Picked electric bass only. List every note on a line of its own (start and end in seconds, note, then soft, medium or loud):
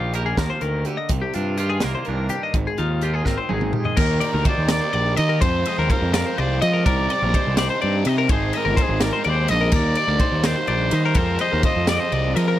0.00 0.33 A#1 medium
0.37 0.48 D#2 medium
0.62 0.83 D2 medium
1.10 1.21 C2 medium
1.36 1.78 G2 medium
1.84 1.94 C2 medium
2.08 2.29 C2 medium
2.54 2.65 G#1 medium
2.79 3.21 D#2 medium
3.26 3.37 G#1 medium
3.51 3.72 G#1 medium
3.98 4.19 D#2 loud
4.34 4.45 D2 medium
4.58 4.79 D#2 loud
4.94 5.15 A#1 medium
5.19 5.40 D#3 loud
5.42 5.63 F2 loud
5.79 5.89 D#2 medium
6.02 6.23 F2 medium
6.39 6.59 C2 medium
6.63 6.83 F3 loud
6.86 7.07 C2 loud
7.22 7.33 A#1 loud
7.47 7.68 C2 loud
7.84 8.04 G2 medium
8.06 8.27 C3 loud
8.30 8.51 G#1 medium
8.66 8.76 G1 loud
8.89 9.10 G#1 loud
9.26 9.47 D#2 medium
9.50 9.71 A#1 medium
9.72 9.94 D#2 medium
10.08 10.19 D2 loud
10.32 10.53 D#2 medium
10.68 10.89 A#1 medium
10.93 11.14 D#3 loud
11.15 11.37 F2 medium
11.53 11.63 D#2 medium
11.76 11.97 F2 medium
12.12 12.33 C2 medium
12.36 12.57 F3 loud